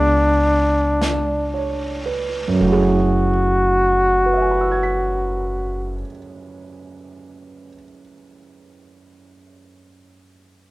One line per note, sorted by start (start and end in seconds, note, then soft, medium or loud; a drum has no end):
0.00 2.57 C#2 medium
0.00 2.58 B3 soft
0.00 2.11 D4 medium
0.00 2.60 D4 soft
0.00 2.62 F4 soft
0.00 2.63 G#4 soft
1.01 2.04 D5 soft
1.01 brush sweep soft
1.01 snare soft
1.01 hi-hat pedal soft
1.54 2.39 C#5 soft
2.06 2.94 B4 soft
2.48 5.92 F#2 medium
2.54 5.99 F#3 soft
2.60 6.01 F#1 medium
2.60 6.04 A3 soft
2.60 6.04 F#4 medium
2.66 6.11 E4 soft
2.72 6.17 G#4 medium
4.26 7.66 B4 soft
4.34 7.74 E5 soft
4.41 7.82 G#5 soft
4.51 7.92 B5 soft
4.61 8.01 E6 soft
4.71 8.12 G#6 soft
4.83 8.24 B6 soft